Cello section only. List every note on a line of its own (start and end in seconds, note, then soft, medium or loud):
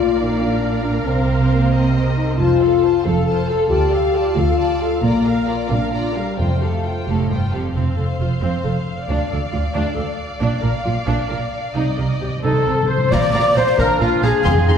0.00 1.07 A#2 soft
1.07 2.36 C3 soft
2.40 2.94 F2 medium
3.06 3.61 F2 medium
3.71 4.26 D2 medium
4.37 4.92 D2 medium
5.03 5.60 A#2 medium
5.71 6.28 A#2 medium
6.38 6.96 F2 medium
7.08 7.29 A2 medium
7.31 7.53 G2 soft
7.54 7.74 F2 soft
7.76 7.84 F2 soft
7.98 8.06 F2 soft
8.21 8.29 F2 soft
8.43 8.51 F2 soft
8.65 8.73 F2 soft
9.09 9.17 D2 soft
9.32 9.40 D2 soft
9.53 9.61 D2 soft
9.75 9.83 D2 medium
9.97 10.05 D2 soft
10.41 10.49 A#2 medium
10.63 10.71 A#2 soft
10.85 10.93 A#2 soft
11.07 11.15 A#2 medium
11.30 11.38 A#2 soft
11.75 11.83 C3 soft
11.99 12.07 C3 soft
12.21 12.29 C3 soft
12.43 12.51 C3 soft
12.66 12.74 C3 soft
13.12 13.20 A#2 medium
13.33 13.41 A#2 medium
13.55 13.63 A#2 medium
13.77 13.85 A#2 medium
14.01 14.09 A#2 medium
14.23 14.31 A#2 medium
14.46 14.54 F2 medium
14.68 14.76 F2 medium